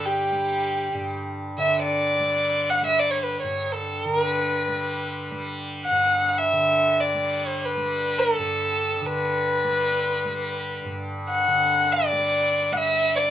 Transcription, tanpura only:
0, 0, Header, 1, 2, 480
1, 0, Start_track
1, 0, Tempo, 500000
1, 12772, End_track
2, 0, Start_track
2, 0, Title_t, "Tanpura"
2, 0, Program_c, 0, 104
2, 0, Note_on_c, 0, 43, 60
2, 0, Note_on_c, 0, 50, 52
2, 0, Note_on_c, 0, 55, 52
2, 306, Note_off_c, 0, 55, 0
2, 306, Note_on_c, 0, 55, 52
2, 903, Note_off_c, 0, 43, 0
2, 907, Note_on_c, 0, 43, 52
2, 1509, Note_off_c, 0, 50, 0
2, 1513, Note_on_c, 0, 50, 60
2, 2111, Note_off_c, 0, 55, 0
2, 2111, Note_on_c, 0, 55, 50
2, 2708, Note_off_c, 0, 55, 0
2, 2708, Note_on_c, 0, 55, 57
2, 3298, Note_off_c, 0, 43, 0
2, 3302, Note_on_c, 0, 43, 49
2, 3888, Note_off_c, 0, 50, 0
2, 3891, Note_on_c, 0, 50, 59
2, 4493, Note_off_c, 0, 55, 0
2, 4493, Note_on_c, 0, 55, 51
2, 5100, Note_off_c, 0, 55, 0
2, 5100, Note_on_c, 0, 55, 59
2, 5672, Note_off_c, 0, 43, 0
2, 5676, Note_on_c, 0, 43, 53
2, 6264, Note_off_c, 0, 50, 0
2, 6268, Note_on_c, 0, 50, 55
2, 6857, Note_off_c, 0, 55, 0
2, 6857, Note_on_c, 0, 55, 60
2, 7457, Note_off_c, 0, 55, 0
2, 7457, Note_on_c, 0, 55, 61
2, 8053, Note_off_c, 0, 43, 0
2, 8057, Note_on_c, 0, 43, 60
2, 8650, Note_off_c, 0, 50, 0
2, 8654, Note_on_c, 0, 50, 59
2, 9254, Note_off_c, 0, 55, 0
2, 9254, Note_on_c, 0, 55, 61
2, 9839, Note_off_c, 0, 55, 0
2, 9839, Note_on_c, 0, 55, 58
2, 10416, Note_off_c, 0, 43, 0
2, 10420, Note_on_c, 0, 43, 64
2, 11012, Note_off_c, 0, 50, 0
2, 11015, Note_on_c, 0, 50, 52
2, 11636, Note_off_c, 0, 55, 0
2, 11636, Note_on_c, 0, 55, 54
2, 12208, Note_off_c, 0, 55, 0
2, 12208, Note_on_c, 0, 55, 62
2, 12772, Note_off_c, 0, 43, 0
2, 12772, Note_off_c, 0, 50, 0
2, 12772, Note_off_c, 0, 55, 0
2, 12772, End_track
0, 0, End_of_file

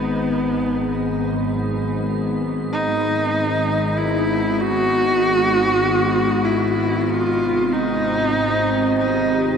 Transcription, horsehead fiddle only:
0, 0, Header, 1, 2, 480
1, 0, Start_track
1, 0, Key_signature, 5, "minor"
1, 0, Tempo, 1250000
1, 804, Time_signature, 4, 2, 24, 8
1, 3676, End_track
2, 0, Start_track
2, 0, Title_t, "Horsehead fiddle"
2, 0, Program_c, 0, 110
2, 0, Note_on_c, 0, 59, 83
2, 574, Note_off_c, 0, 59, 0
2, 1047, Note_on_c, 0, 63, 107
2, 1525, Note_on_c, 0, 64, 93
2, 1531, Note_off_c, 0, 63, 0
2, 1765, Note_on_c, 0, 66, 122
2, 1771, Note_off_c, 0, 64, 0
2, 2476, Note_on_c, 0, 64, 92
2, 2482, Note_off_c, 0, 66, 0
2, 2723, Note_on_c, 0, 65, 97
2, 2729, Note_off_c, 0, 64, 0
2, 2964, Note_on_c, 0, 63, 101
2, 2969, Note_off_c, 0, 65, 0
2, 3444, Note_off_c, 0, 63, 0
2, 3451, Note_on_c, 0, 63, 84
2, 3676, Note_off_c, 0, 63, 0
2, 3676, End_track
0, 0, End_of_file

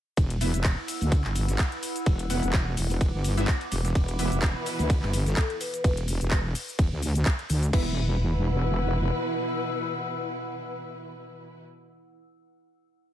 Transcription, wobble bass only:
0, 0, Header, 1, 2, 480
1, 0, Start_track
1, 0, Tempo, 472441
1, 176, Time_signature, 4, 2, 24, 8
1, 13344, End_track
2, 0, Start_track
2, 0, Title_t, "Wobble bass"
2, 0, Program_c, 0, 39
2, 176, Note_on_c, 0, 28, 100
2, 527, Note_off_c, 0, 28, 0
2, 548, Note_on_c, 0, 28, 90
2, 767, Note_off_c, 0, 28, 0
2, 1028, Note_on_c, 0, 38, 96
2, 1247, Note_off_c, 0, 38, 0
2, 1268, Note_on_c, 0, 31, 94
2, 1599, Note_off_c, 0, 31, 0
2, 2097, Note_on_c, 0, 28, 102
2, 2447, Note_off_c, 0, 28, 0
2, 2469, Note_on_c, 0, 28, 96
2, 2799, Note_off_c, 0, 28, 0
2, 2817, Note_on_c, 0, 28, 96
2, 3167, Note_off_c, 0, 28, 0
2, 3189, Note_on_c, 0, 31, 97
2, 3519, Note_off_c, 0, 31, 0
2, 3777, Note_on_c, 0, 28, 94
2, 3999, Note_off_c, 0, 28, 0
2, 4016, Note_on_c, 0, 28, 99
2, 4367, Note_off_c, 0, 28, 0
2, 4389, Note_on_c, 0, 28, 95
2, 4607, Note_off_c, 0, 28, 0
2, 4868, Note_on_c, 0, 38, 99
2, 5087, Note_off_c, 0, 38, 0
2, 5108, Note_on_c, 0, 31, 96
2, 5439, Note_off_c, 0, 31, 0
2, 5936, Note_on_c, 0, 28, 100
2, 6287, Note_off_c, 0, 28, 0
2, 6308, Note_on_c, 0, 28, 93
2, 6639, Note_off_c, 0, 28, 0
2, 6897, Note_on_c, 0, 28, 105
2, 7007, Note_off_c, 0, 28, 0
2, 7028, Note_on_c, 0, 38, 100
2, 7359, Note_off_c, 0, 38, 0
2, 7617, Note_on_c, 0, 38, 96
2, 7839, Note_off_c, 0, 38, 0
2, 7856, Note_on_c, 0, 28, 98
2, 9256, Note_off_c, 0, 28, 0
2, 13344, End_track
0, 0, End_of_file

